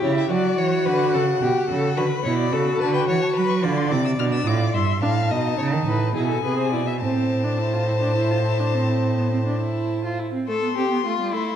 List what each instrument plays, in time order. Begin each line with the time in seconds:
Already playing: violin G4
0.02 cello C#3, viola E4, violin C#5
0.17 violin E5
0.30 cello F#3, viola F#4, violin D5 F#5
0.58 cello E3, violin C#5
0.86 cello D3, violin B4
1.14 cello C#3, violin A4
1.42 cello B2, violin G4
1.69 cello C#3, violin A4
1.97 cello D3, viola F#4, violin B4 B5
2.24 cello B2, viola E4, violin C#5
2.38 violin D5
2.52 cello C#3, viola F#4, violin A4
2.80 cello D3, violin B4 A5
2.95 violin G5
3.08 cello E3, violin C#5 F#5
3.22 violin A5
3.35 cello F#3, violin B4 B5
3.50 violin C#6
3.63 cello D3, viola F4, violin D5 B5
3.78 violin C6
3.90 cello C3, viola E4, violin D6
4.05 violin E6
4.18 cello B2, viola D4, violin F6
4.33 violin E6
4.46 cello A2, viola F4, violin D5 D6
4.74 cello G2, viola E4, violin E5 C6
5.02 cello A2, viola D4, violin F5 A5
5.30 cello B2, viola D#4, violin D#5
5.58 cello C#3, violin C#5
5.73 cello D#3
5.87 cello A2, violin B4
6.15 cello B2, viola E4, violin G#4 G#5
6.29 violin A4
6.44 cello C3, viola G#4, violin B4
6.58 violin C5
6.72 cello B2, viola E4, violin D5
6.87 violin E5
7.01 cello A2, viola C4, violin C5 A5
7.44 viola D4
7.58 viola E4
7.73 viola F4
7.87 viola E4
8.01 viola D4
8.16 viola E4
8.31 viola F4
8.45 viola E4
8.60 viola D4
8.74 viola C4
9.18 viola B3
9.31 viola C4
9.46 viola D4
9.60 viola E4
10.05 viola F4
10.19 viola E4
10.33 viola C4
10.48 viola A3, violin A4 C6
10.63 viola B3
10.77 viola C4, violin G4
10.91 viola B3
11.06 viola A3, violin F4
11.20 viola G3
11.33 viola A3, violin E4 C6